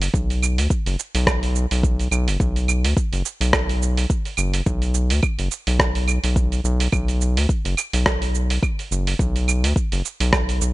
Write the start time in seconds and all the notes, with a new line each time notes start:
0.02 open hi-hat, cabasa
0.14 B1, kick, cabasa
0.30 open hi-hat, cabasa
0.43 cabasa, claves
0.58 D2, open hi-hat, cabasa
0.70 kick, cabasa
0.86 F#1, open hi-hat, cabasa
0.99 cabasa
1.15 B1, open hi-hat, cabasa
1.27 kick, cross-stick, cabasa, claves
1.43 open hi-hat, cabasa
1.56 cabasa
1.71 B1, open hi-hat, cabasa
1.83 kick, cabasa
1.99 open hi-hat, cabasa
2.11 B1, cabasa, claves
2.28 F#1, open hi-hat, cabasa
2.40 B1, kick, cabasa
2.56 open hi-hat, cabasa
2.68 cabasa, claves
2.84 D2, open hi-hat, cabasa
2.97 kick, cabasa
3.12 F#1, open hi-hat, cabasa
3.25 cabasa
3.41 B1, open hi-hat, cabasa
3.53 kick, cross-stick, cabasa, claves
3.69 open hi-hat, cabasa
3.82 cabasa
3.97 open hi-hat, cabasa
4.10 kick, cabasa
4.25 open hi-hat, cabasa
4.37 F#1, cabasa, claves
4.54 open hi-hat, cabasa
4.66 B1, kick, cabasa
4.82 open hi-hat, cabasa
4.94 cabasa
5.10 D2, open hi-hat, cabasa
5.23 kick, cabasa, claves
5.38 F#1, open hi-hat, cabasa
5.51 cabasa
5.67 B1, open hi-hat, cabasa
5.79 kick, cross-stick, cabasa
5.95 open hi-hat, cabasa
6.08 cabasa, claves
6.24 B1, open hi-hat, cabasa
6.36 kick, cabasa
6.52 open hi-hat, cabasa
6.64 B1, cabasa
6.80 open hi-hat, cabasa
6.92 B1, kick, cabasa, claves
7.08 open hi-hat, cabasa
7.21 cabasa
7.36 D2, open hi-hat, cabasa
7.49 kick, cabasa
7.65 F#1, open hi-hat, cabasa
7.77 cabasa, claves
7.93 B1, open hi-hat, cabasa
8.06 kick, cross-stick, cabasa
8.22 open hi-hat, cabasa
8.35 cabasa
8.50 open hi-hat, cabasa
8.63 kick, cabasa, claves
8.79 open hi-hat, cabasa
8.91 F#1, cabasa
9.07 open hi-hat, cabasa
9.19 B1, kick, cabasa
9.36 open hi-hat, cabasa
9.48 cabasa, claves
9.64 D2, open hi-hat, cabasa
9.76 kick, cabasa
9.92 F#1, open hi-hat, cabasa
10.05 cabasa
10.20 B1, open hi-hat, cabasa
10.33 kick, cross-stick, cabasa, claves
10.49 open hi-hat, cabasa
10.61 B1, cabasa